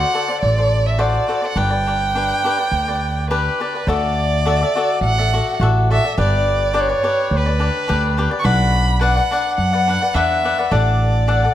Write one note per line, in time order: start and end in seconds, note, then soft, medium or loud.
0.00 0.12 F#4 medium
0.00 0.13 A4 medium
0.00 0.14 C5 medium
0.00 0.14 D5 medium
0.00 0.40 F#5 medium
0.14 0.28 F#4 medium
0.14 0.28 A4 medium
0.14 0.28 C5 soft
0.14 0.27 D5 medium
0.28 0.58 A4 soft
0.28 0.57 C5 soft
0.28 0.56 D5 soft
0.41 1.17 A1 medium
0.41 0.88 D5 medium
0.57 0.98 A4 soft
0.57 0.98 C5 soft
0.57 0.98 D5 soft
0.86 1.02 E5 medium
0.98 1.27 F#4 medium
0.98 1.28 A4 medium
0.98 1.28 C5 medium
0.98 1.29 D5 medium
0.98 1.47 D5 medium
1.28 1.42 F#4 medium
1.28 1.42 A4 medium
1.28 1.41 C5 medium
1.28 1.41 D5 medium
1.42 1.56 A4 soft
1.42 1.56 C5 soft
1.42 1.56 D5 soft
1.42 1.59 F#5 medium
1.56 2.31 G1 medium
1.56 1.71 D4 medium
1.56 1.71 G4 medium
1.56 1.71 B4 medium
1.56 1.69 D5 medium
1.56 3.30 G5 medium
1.70 1.86 G4 soft
1.70 1.87 B4 soft
1.70 1.86 D5 soft
1.87 2.14 D4 soft
1.87 2.14 G4 soft
1.87 2.15 B4 soft
1.87 2.15 D5 soft
2.15 2.43 D4 medium
2.15 2.44 G4 medium
2.15 2.45 B4 medium
2.15 2.45 D5 medium
2.44 2.58 D4 medium
2.44 2.58 G4 medium
2.44 2.58 B4 medium
2.44 2.57 D5 medium
2.58 2.88 G4 soft
2.58 2.87 B4 soft
2.58 2.87 D5 soft
2.72 3.47 D2 medium
2.88 3.29 G4 soft
2.88 3.30 B4 soft
2.88 3.30 D5 soft
3.30 3.59 D4 medium
3.30 3.59 G4 medium
3.30 3.89 B4 medium
3.30 3.60 B4 medium
3.30 3.60 D5 medium
3.60 3.74 D4 medium
3.60 3.74 G4 medium
3.60 3.74 B4 soft
3.60 3.73 D5 medium
3.75 3.88 G4 soft
3.75 3.88 B4 soft
3.75 3.88 D5 soft
3.87 4.62 D2 loud
3.87 4.44 F#4 medium
3.87 4.45 A4 medium
3.87 5.03 D5 medium
3.87 4.47 D5 medium
3.87 4.45 E5 medium
4.45 4.60 F#4 medium
4.45 4.61 A4 medium
4.45 4.60 D5 medium
4.45 4.61 E5 medium
4.61 4.75 A4 soft
4.61 4.76 D5 medium
4.61 4.76 E5 soft
4.75 5.18 F#4 medium
4.75 5.19 A4 medium
4.75 5.17 D5 medium
4.75 5.18 E5 medium
5.01 5.39 A1 medium
5.01 5.57 F#5 medium
5.18 5.32 A4 soft
5.18 5.33 D5 soft
5.18 5.33 E5 soft
5.33 5.60 F#4 medium
5.33 5.61 A4 soft
5.33 5.61 D5 medium
5.33 5.61 E5 medium
5.60 5.97 A1 medium
5.60 5.89 F#4 medium
5.60 5.90 A4 medium
5.60 5.90 D5 medium
5.60 5.90 E5 medium
5.90 6.04 F#4 soft
5.90 6.04 A4 medium
5.90 6.03 D5 medium
5.90 6.04 E5 medium
5.90 6.16 E5 medium
6.04 6.17 A4 soft
6.04 6.17 D5 soft
6.04 6.18 E5 soft
6.18 6.92 G1 medium
6.18 6.73 D4 medium
6.18 6.72 G4 medium
6.18 6.74 B4 medium
6.18 6.74 D5 medium
6.18 6.82 D5 medium
6.74 6.89 D4 medium
6.74 6.88 G4 medium
6.74 6.88 B4 medium
6.74 6.87 D5 medium
6.80 7.39 C#5 medium
6.89 7.02 G4 soft
6.89 7.03 B4 soft
6.89 7.03 D5 soft
7.03 7.46 D4 soft
7.03 7.45 G4 medium
7.03 7.45 B4 medium
7.03 7.45 D5 medium
7.31 7.68 D2 medium
7.38 8.21 B4 medium
7.46 7.59 G4 soft
7.46 7.59 B4 soft
7.46 7.60 D5 soft
7.59 7.87 D4 medium
7.59 7.88 G4 soft
7.59 7.88 B4 medium
7.59 7.88 D5 medium
7.88 8.26 D2 medium
7.88 8.16 D4 medium
7.88 8.17 G4 medium
7.88 8.18 B4 medium
7.88 8.18 D5 medium
8.17 8.31 D4 medium
8.17 8.32 G4 medium
8.17 8.30 B4 medium
8.17 8.30 D5 medium
8.31 8.44 G4 soft
8.31 8.43 B4 soft
8.31 8.44 D5 medium
8.39 8.47 C#6 medium
8.44 9.18 B1 loud
8.44 9.00 D4 medium
8.44 9.00 B4 medium
8.44 9.01 D5 medium
8.44 9.02 F#5 medium
8.44 9.01 B5 medium
9.01 9.16 D4 medium
9.01 9.16 B4 medium
9.01 9.16 D5 medium
9.01 9.15 F#5 medium
9.01 9.54 F#5 medium
9.16 9.30 B4 soft
9.16 9.31 D5 soft
9.16 9.31 F#5 medium
9.31 9.73 D4 medium
9.31 9.73 B4 medium
9.31 9.72 D5 medium
9.31 9.72 F#5 medium
9.57 9.95 F#2 medium
9.57 10.16 F#5 medium
9.73 9.88 B4 soft
9.73 9.88 D5 medium
9.73 9.88 F#5 soft
9.87 10.01 D4 medium
9.87 10.01 B4 medium
9.87 10.01 D5 medium
9.87 10.00 F#5 medium
10.01 10.15 B4 soft
10.01 10.15 D5 soft
10.01 10.15 F#5 soft
10.14 10.51 E2 medium
10.14 10.43 D4 medium
10.14 10.44 B4 medium
10.14 10.44 D5 medium
10.14 10.73 E5 medium
10.14 10.44 F#5 medium
10.44 10.58 D4 medium
10.44 10.58 B4 medium
10.44 10.58 D5 medium
10.44 10.57 F#5 medium
10.58 10.71 B4 soft
10.58 10.70 D5 soft
10.58 10.71 F#5 soft
10.71 11.45 A1 medium
10.71 11.26 D4 medium
10.71 11.28 A4 medium
10.71 11.27 D5 medium
10.71 11.54 D5 medium
10.71 11.27 F#5 medium
11.28 11.43 D4 medium
11.28 11.43 A4 medium
11.28 11.43 D5 medium
11.28 11.42 F#5 medium
11.43 11.54 A4 soft
11.43 11.54 D5 soft
11.43 11.54 F#5 medium